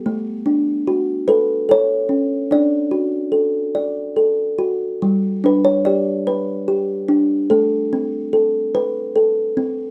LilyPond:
\new Staff \with { instrumentName = "Kalimba" } { \time 6/8 \key d \major \tempo 4. = 49 << { r4. a'8 cis''4 | d''2 r4 | r8 b'16 cis''16 d''8 r4. | a'2 r4 | } \\ { a8 d'8 fis'8 b'8 a'8 cis'8 | d'8 fis'8 a'8 d''8 a'8 fis'8 | g8 d'8 g'8 b'8 g'8 d'8 | a8 c'8 a'8 b'8 a'8 c'8 | } >> }